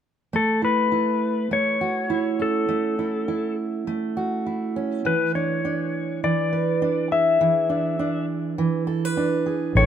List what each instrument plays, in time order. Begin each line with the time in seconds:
0.33 steel-string acoustic guitar A3, electric slide guitar A4
0.62 steel-string acoustic guitar E4, electric slide guitar B4
0.92 steel-string acoustic guitar E4
1.51 steel-string acoustic guitar A3, electric slide guitar C#5
1.81 steel-string acoustic guitar F#4
2.10 steel-string acoustic guitar E4
2.39 steel-string acoustic guitar C#4, electric slide guitar A4
2.69 steel-string acoustic guitar A3
2.99 steel-string acoustic guitar E4
3.28 steel-string acoustic guitar E4
3.87 steel-string acoustic guitar A3
4.17 steel-string acoustic guitar F#4
4.46 steel-string acoustic guitar E4
4.76 steel-string acoustic guitar C#4
5.05 steel-string acoustic guitar E3, electric slide guitar B4
5.35 steel-string acoustic guitar D4, electric slide guitar C#5
5.65 steel-string acoustic guitar D4
6.24 steel-string acoustic guitar E3, electric slide guitar D5
6.53 steel-string acoustic guitar B4
6.82 steel-string acoustic guitar D4
7.12 steel-string acoustic guitar G#4, electric slide guitar E5
7.41 steel-string acoustic guitar E3
7.69 steel-string acoustic guitar D4
7.99 steel-string acoustic guitar D4
8.58 steel-string acoustic guitar E3
8.87 steel-string acoustic guitar A4
9.05 steel-string acoustic guitar B4
9.17 steel-string acoustic guitar D4
9.46 steel-string acoustic guitar G#4
9.75 fingered electric bass A1, steel-string acoustic guitar A2 A4, electric slide guitar C#5